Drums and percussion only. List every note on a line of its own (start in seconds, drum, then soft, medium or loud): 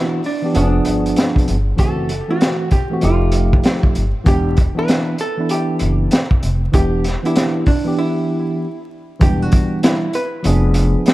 0.24 open hi-hat soft
0.55 closed hi-hat medium
0.85 closed hi-hat medium
1.06 closed hi-hat soft
1.16 snare loud
1.16 closed hi-hat medium
1.36 kick medium
1.36 closed hi-hat medium
1.48 closed hi-hat medium
1.78 kick medium
1.78 closed hi-hat medium
2.09 closed hi-hat medium
2.41 snare loud
2.41 closed hi-hat medium
2.71 kick medium
2.71 closed hi-hat medium
3.01 closed hi-hat medium
3.32 closed hi-hat medium
3.53 kick medium
3.63 snare loud
3.63 closed hi-hat medium
3.83 kick medium
3.95 closed hi-hat medium
4.26 kick loud
4.26 closed hi-hat medium
4.57 kick medium
4.57 closed hi-hat medium
4.88 snare medium
4.88 closed hi-hat medium
5.18 closed hi-hat medium
5.49 closed hi-hat medium
5.79 closed hi-hat medium
6.11 snare loud
6.11 closed hi-hat medium
6.31 kick medium
6.43 closed hi-hat medium
6.73 kick loud
6.73 closed hi-hat medium
7.04 snare soft
7.04 closed hi-hat medium
7.25 closed hi-hat soft
7.36 snare loud
7.36 closed hi-hat medium
7.66 kick medium
7.66 open hi-hat soft
9.21 kick loud
9.21 closed hi-hat medium
9.52 kick medium
9.52 closed hi-hat medium
9.83 snare loud
9.83 closed hi-hat medium
10.13 closed hi-hat medium
10.44 closed hi-hat medium
10.74 closed hi-hat medium
11.06 snare loud
11.06 closed hi-hat medium